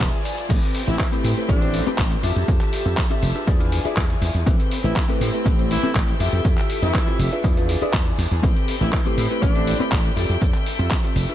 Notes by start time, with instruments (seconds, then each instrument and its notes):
Already playing: string section F3 D5 G#5, clean electric guitar F4 G#4 D5
0.00 slap bass E1, kick, clap, closed hi-hat, tambourine, shaker
0.13 closed hi-hat, shaker
0.25 clean electric guitar D5, open hi-hat, tambourine, shaker
0.38 closed hi-hat, tambourine, shaker
0.49 slap bass A1, clean electric guitar C4 G4 A4 B4, string section C4 B4 G5, kick, closed hi-hat, crash, tambourine, shaker
0.63 closed hi-hat, shaker
0.75 open hi-hat, tambourine, shaker
0.87 slap bass A1, horn section E3 E4, reed electric piano A3 C4 E4 G4 B4, closed hi-hat, tambourine, shaker
0.98 horn section E3 E4, kick, clap, closed hi-hat, tambourine, shaker
1.12 reed electric piano A3 C4 E4 G4 B4, clean electric guitar C4 G4 A4 B4, closed hi-hat, shaker
1.24 slap bass A2, open hi-hat, tambourine, shaker
1.37 reed electric piano A3 C4 E4 G4 B4, closed hi-hat, tambourine, shaker
1.48 slap bass A1, horn section D3 D4, clean electric guitar C4 G4 A4 B4, kick, closed hi-hat, tambourine, shaker
1.62 reed electric piano A3 C4 E4 G4 C5, closed hi-hat
1.74 open hi-hat, tambourine, shaker
1.86 reed electric piano A3 C4 E4 G4 A4, clean electric guitar C4 G4 A4 B4, muted slap bass stroke, closed hi-hat, tambourine, shaker
1.98 slap bass A1, kick, clap, closed hi-hat, tambourine, shaker
2.12 closed hi-hat
2.23 slap bass F2, clean electric guitar F4 G4 A4 E5, string section G4 E5 A5, open hi-hat, tambourine, shaker
2.36 slap bass F2, closed hi-hat, tambourine, shaker
2.47 slap bass F2, kick, closed hi-hat, tambourine, shaker
2.61 clap, closed hi-hat, shaker
2.73 open hi-hat, tambourine, shaker
2.86 slap bass F2, reed electric piano C4 F4 G4 A4 E5, tambourine, shaker
2.97 kick, clap, closed hi-hat, shaker
3.10 reed electric piano C4 F4 G4 A4 E5, clean electric guitar F4 G4 A4 E5, closed hi-hat, shaker
3.22 slap bass F1, open hi-hat, tambourine, shaker
3.35 reed electric piano D4 F4 G#4 B4 E5, closed hi-hat, tambourine, shaker
3.47 slap bass E2, string section F3 D5 G#5, clean electric guitar E4 F4 G#4 D5, kick, closed hi-hat, tambourine, shaker
3.60 reed electric piano D4 F4 G#4 B4 F5, closed hi-hat
3.72 clean electric guitar G#5, open hi-hat, tambourine, shaker
3.84 reed electric piano D4 F4 G#4 B4 D5, clean electric guitar E4 F4 G#4 D5 E5, muted slap bass stroke, closed hi-hat, tambourine, shaker
3.97 slap bass E2, kick, clap, closed hi-hat, tambourine, shaker
4.10 closed hi-hat
4.22 slap bass E2, open hi-hat, tambourine, shaker
4.34 slap bass E2, closed hi-hat, tambourine, shaker
4.46 slap bass A1, clean electric guitar C4 G4 A4 B4, string section C4 B4 G5, kick, closed hi-hat, tambourine, shaker
4.60 closed hi-hat, shaker
4.71 open hi-hat, tambourine, shaker
4.84 slap bass A1, horn section E3 E4, reed electric piano A3 C4 E4 G4 B4, closed hi-hat, tambourine, shaker
4.96 horn section E3 E4, kick, clap, closed hi-hat, tambourine, shaker
5.09 reed electric piano A3 C4 E4 G4 B4, clean electric guitar C4 G4 A4 B4, closed hi-hat, shaker
5.21 slap bass A2, open hi-hat, tambourine, shaker
5.34 reed electric piano A3 C4 E4 G4 B4, closed hi-hat, tambourine, shaker
5.45 slap bass A1, clean electric guitar C4 G4 A4 B4, kick, closed hi-hat, tambourine, shaker
5.58 reed electric piano A3 C4 E4 G4 C5, closed hi-hat
5.70 horn section E3 E4, open hi-hat, tambourine, shaker
5.83 reed electric piano A3 C4 E4 G4 A4, clean electric guitar C4 G4 A4 B4, muted slap bass stroke, closed hi-hat, tambourine, shaker
5.95 slap bass A1, kick, clap, closed hi-hat, tambourine, shaker
6.08 closed hi-hat
6.20 slap bass F2, clean electric guitar F4 G4 A4 E5, string section A4 E5, open hi-hat, tambourine, shaker
6.33 slap bass F2, closed hi-hat, tambourine, shaker
6.45 slap bass F2, kick, closed hi-hat, shaker
6.57 clap, closed hi-hat, shaker
6.70 open hi-hat, tambourine, shaker
6.83 slap bass F2, horn section E3 E4, reed electric piano C4 F4 G4 A4 E5, tambourine, shaker
6.94 kick, clap, closed hi-hat, tambourine, shaker
7.07 reed electric piano C4 F4 G4 A4 E5, clean electric guitar F4 G4 A4 E5, closed hi-hat, shaker
7.19 slap bass F1, open hi-hat, tambourine, shaker
7.32 reed electric piano D4 F4 G#4 B4 E5, closed hi-hat, tambourine, shaker
7.44 slap bass E2, string section D4 G#4, clean electric guitar E4 F4 G#4 D5, kick, closed hi-hat, shaker
7.57 reed electric piano D4 F4 G#4 B4 F5, closed hi-hat
7.69 open hi-hat, tambourine, shaker
7.82 reed electric piano D4 F4 G#4 B4 D5, clean electric guitar E4 F4 G#4 D5, muted slap bass stroke, closed hi-hat, tambourine, shaker
7.93 slap bass E2, kick, clap, closed hi-hat, shaker
8.07 closed hi-hat
8.17 slap bass E2, open hi-hat, tambourine, shaker
8.31 slap bass E2, closed hi-hat, tambourine, shaker
8.43 slap bass A1, clean electric guitar C4 G4 A4 B4, string section C4 G5 B5, kick, closed hi-hat, tambourine, shaker
8.56 closed hi-hat, shaker
8.68 open hi-hat, tambourine, shaker
8.81 slap bass A1, horn section E3 E4, reed electric piano A3 C4 E4 G4 B4, closed hi-hat, tambourine, shaker
8.93 horn section E3 E4, kick, clap, closed hi-hat, tambourine, shaker
9.05 reed electric piano A3 C4 E4 G4 B4, clean electric guitar C4 G4 A4 C5, closed hi-hat, shaker
9.18 slap bass A2, open hi-hat, tambourine, shaker
9.30 reed electric piano A3 C4 E4 G4 B4, closed hi-hat, tambourine, shaker
9.42 slap bass A1, horn section D3 D4, clean electric guitar C4 G4 A4 B4, kick, closed hi-hat, tambourine, shaker
9.55 reed electric piano A3 C4 E4 G4 C5, closed hi-hat
9.67 open hi-hat, tambourine, shaker
9.80 reed electric piano A3 C4 E4 G4 A4, clean electric guitar C4 G4 A4 B4, muted slap bass stroke, closed hi-hat, tambourine, shaker
9.92 slap bass A1, kick, clap, closed hi-hat, tambourine, shaker
10.05 closed hi-hat
10.16 slap bass F2, clean electric guitar E4 F4 G4 A4, string section A4 E5, open hi-hat, tambourine, shaker
10.30 slap bass F2, closed hi-hat, tambourine, shaker
10.41 slap bass F2, kick, closed hi-hat, tambourine, shaker
10.54 clap, closed hi-hat, shaker
10.66 open hi-hat, tambourine, shaker
10.79 slap bass F2, reed electric piano C4 F4 G4 A4 E5, closed hi-hat, tambourine, shaker
10.91 kick, clap, closed hi-hat, tambourine, shaker
11.04 reed electric piano C4 F4 G4 A4 E5, closed hi-hat, shaker
11.15 slap bass F1, open hi-hat, tambourine, shaker
11.29 reed electric piano D4 F4 G#4 B4 E5, closed hi-hat, tambourine, shaker